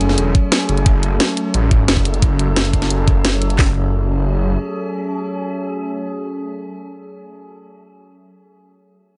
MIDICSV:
0, 0, Header, 1, 4, 480
1, 0, Start_track
1, 0, Key_signature, 3, "minor"
1, 0, Tempo, 340909
1, 1211, Time_signature, 4, 2, 24, 8
1, 12911, End_track
2, 0, Start_track
2, 0, Title_t, "Synth drone"
2, 0, Program_c, 0, 95
2, 0, Note_on_c, 0, 54, 86
2, 0, Note_on_c, 0, 57, 78
2, 0, Note_on_c, 0, 61, 76
2, 0, Note_on_c, 0, 68, 90
2, 1197, Note_off_c, 0, 68, 0
2, 1211, Note_on_c, 0, 69, 93
2, 4995, Note_off_c, 0, 54, 0
2, 4995, Note_off_c, 0, 57, 0
2, 4995, Note_off_c, 0, 61, 0
2, 5036, Note_off_c, 0, 69, 0
2, 5051, Note_on_c, 0, 54, 84
2, 5051, Note_on_c, 0, 57, 78
2, 5051, Note_on_c, 0, 61, 76
2, 5051, Note_on_c, 0, 68, 92
2, 9961, Note_off_c, 0, 54, 0
2, 9961, Note_off_c, 0, 57, 0
2, 9961, Note_off_c, 0, 61, 0
2, 9961, Note_off_c, 0, 68, 0
2, 12911, End_track
3, 0, Start_track
3, 0, Title_t, "Detuned saw bass"
3, 0, Program_c, 1, 39
3, 11, Note_on_c, 1, 30, 95
3, 232, Note_off_c, 1, 30, 0
3, 251, Note_on_c, 1, 28, 91
3, 472, Note_off_c, 1, 28, 0
3, 971, Note_on_c, 1, 30, 97
3, 1192, Note_off_c, 1, 30, 0
3, 1211, Note_on_c, 1, 30, 94
3, 1672, Note_off_c, 1, 30, 0
3, 2171, Note_on_c, 1, 33, 90
3, 2632, Note_off_c, 1, 33, 0
3, 2651, Note_on_c, 1, 30, 94
3, 3832, Note_off_c, 1, 30, 0
3, 3851, Note_on_c, 1, 30, 93
3, 4072, Note_off_c, 1, 30, 0
3, 4092, Note_on_c, 1, 30, 90
3, 5032, Note_off_c, 1, 30, 0
3, 5051, Note_on_c, 1, 30, 93
3, 6435, Note_off_c, 1, 30, 0
3, 12911, End_track
4, 0, Start_track
4, 0, Title_t, "Drums"
4, 11, Note_on_c, 9, 42, 61
4, 131, Note_on_c, 9, 38, 34
4, 152, Note_off_c, 9, 42, 0
4, 251, Note_on_c, 9, 42, 87
4, 272, Note_off_c, 9, 38, 0
4, 392, Note_off_c, 9, 42, 0
4, 491, Note_on_c, 9, 36, 96
4, 491, Note_on_c, 9, 42, 62
4, 632, Note_off_c, 9, 36, 0
4, 632, Note_off_c, 9, 42, 0
4, 731, Note_on_c, 9, 38, 114
4, 731, Note_on_c, 9, 42, 85
4, 872, Note_off_c, 9, 38, 0
4, 872, Note_off_c, 9, 42, 0
4, 971, Note_on_c, 9, 42, 62
4, 1091, Note_off_c, 9, 42, 0
4, 1091, Note_on_c, 9, 42, 34
4, 1211, Note_off_c, 9, 42, 0
4, 1211, Note_on_c, 9, 36, 108
4, 1211, Note_on_c, 9, 42, 90
4, 1351, Note_off_c, 9, 42, 0
4, 1352, Note_off_c, 9, 36, 0
4, 1451, Note_on_c, 9, 42, 62
4, 1591, Note_off_c, 9, 42, 0
4, 1690, Note_on_c, 9, 38, 114
4, 1690, Note_on_c, 9, 42, 88
4, 1831, Note_off_c, 9, 38, 0
4, 1831, Note_off_c, 9, 42, 0
4, 1931, Note_on_c, 9, 42, 64
4, 2071, Note_off_c, 9, 42, 0
4, 2171, Note_on_c, 9, 42, 89
4, 2311, Note_off_c, 9, 42, 0
4, 2411, Note_on_c, 9, 36, 96
4, 2411, Note_on_c, 9, 42, 66
4, 2552, Note_off_c, 9, 36, 0
4, 2552, Note_off_c, 9, 42, 0
4, 2651, Note_on_c, 9, 38, 111
4, 2651, Note_on_c, 9, 42, 89
4, 2771, Note_on_c, 9, 36, 56
4, 2792, Note_off_c, 9, 38, 0
4, 2792, Note_off_c, 9, 42, 0
4, 2891, Note_on_c, 9, 42, 63
4, 2912, Note_off_c, 9, 36, 0
4, 3011, Note_off_c, 9, 42, 0
4, 3011, Note_on_c, 9, 42, 34
4, 3131, Note_off_c, 9, 42, 0
4, 3131, Note_on_c, 9, 36, 112
4, 3131, Note_on_c, 9, 42, 95
4, 3272, Note_off_c, 9, 36, 0
4, 3272, Note_off_c, 9, 42, 0
4, 3371, Note_on_c, 9, 42, 65
4, 3512, Note_off_c, 9, 42, 0
4, 3611, Note_on_c, 9, 38, 110
4, 3611, Note_on_c, 9, 42, 94
4, 3731, Note_off_c, 9, 42, 0
4, 3731, Note_on_c, 9, 42, 35
4, 3752, Note_off_c, 9, 38, 0
4, 3851, Note_off_c, 9, 42, 0
4, 3851, Note_on_c, 9, 36, 54
4, 3851, Note_on_c, 9, 42, 66
4, 3971, Note_off_c, 9, 42, 0
4, 3971, Note_on_c, 9, 38, 34
4, 3971, Note_on_c, 9, 42, 35
4, 3992, Note_off_c, 9, 36, 0
4, 4091, Note_off_c, 9, 42, 0
4, 4091, Note_on_c, 9, 42, 90
4, 4112, Note_off_c, 9, 38, 0
4, 4231, Note_off_c, 9, 42, 0
4, 4331, Note_on_c, 9, 36, 92
4, 4331, Note_on_c, 9, 42, 64
4, 4471, Note_off_c, 9, 42, 0
4, 4472, Note_off_c, 9, 36, 0
4, 4571, Note_on_c, 9, 38, 111
4, 4571, Note_on_c, 9, 42, 92
4, 4712, Note_off_c, 9, 38, 0
4, 4712, Note_off_c, 9, 42, 0
4, 4811, Note_on_c, 9, 42, 67
4, 4931, Note_off_c, 9, 42, 0
4, 4931, Note_on_c, 9, 42, 37
4, 5051, Note_on_c, 9, 36, 106
4, 5051, Note_on_c, 9, 38, 103
4, 5051, Note_on_c, 9, 39, 87
4, 5072, Note_off_c, 9, 42, 0
4, 5192, Note_off_c, 9, 36, 0
4, 5192, Note_off_c, 9, 38, 0
4, 5192, Note_off_c, 9, 39, 0
4, 12911, End_track
0, 0, End_of_file